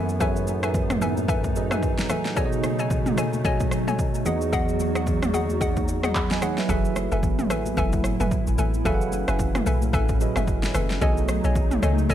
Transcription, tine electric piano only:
Already playing: F#3 F#4 G#4 A4 B4 E5
0.19 F#3 F#4 G#4 A4 B4 C#5
1.55 F#3 F#4 G#4 A4 B4 D#5
2.36 B3 F#4 G#4 A4 C#5 D5
2.45 D#5
4.25 E3 B3 F#4 G#4 D#5
6.16 F#5 B5
6.32 D#5 G#5
6.43 C#5 F#5
6.58 B4 E5
6.68 F#3 F#4 G#4 A4 B4 E5
8.84 F#3 F#4 G#4 A4 B4 F5
8.94 F#5
10.20 F#3 F#4 G#4 A4 B4 D#5
11.01 B3 F#4 G#4 A4 C#5 D#5

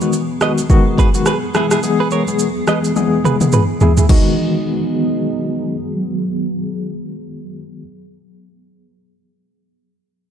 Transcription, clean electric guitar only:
0.42 B4 D#5
0.99 G#4 B4
1.27 G#4 B4
1.56 E4 G#4
1.72 E4 G#4
2.00 G#4 B4
2.12 A#4 C#5
2.69 B4 D#5
3.25 G#4 B4
3.54 G#4 B4
3.82 E4 G#4
3.98 E4 G#4
4.10 D#4

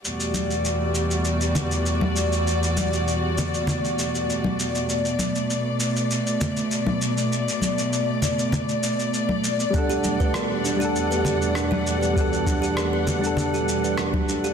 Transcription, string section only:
0.04 E2 B2 G3 A3 F#4 D5
4.88 D5
9.74 E2 G3 F#5

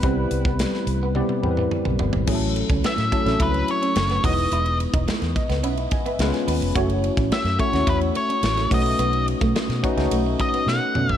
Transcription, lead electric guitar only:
2.86 E5
3.42 B4
3.71 C#5
4.25 D#5
7.33 E5
7.60 C#5
7.89 B4
8.17 C#5
8.74 D#5
10.41 D#5
10.68 F#5
11.13 E5

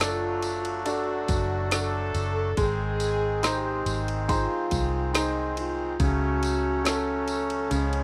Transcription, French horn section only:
0.01 F4
0.86 F#4
1.71 A4
2.58 G#4
3.43 G4
4.29 F4
5.15 D#4
5.58 F4
6.01 F#4
6.85 A4
7.71 C#4

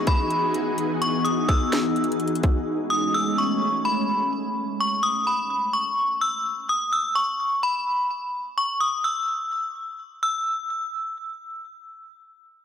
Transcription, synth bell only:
0.07 B5
1.02 C#6
1.25 D#6
1.48 E6
2.90 D#6
3.14 E6
3.38 C#6
3.85 B5
4.81 C#6
5.03 D#6
5.27 B5
5.73 C#6
6.21 E6
6.69 D#6
6.93 E6
7.15 C#6
7.63 B5
8.58 C#6
8.81 D#6
9.04 E6
10.23 E6

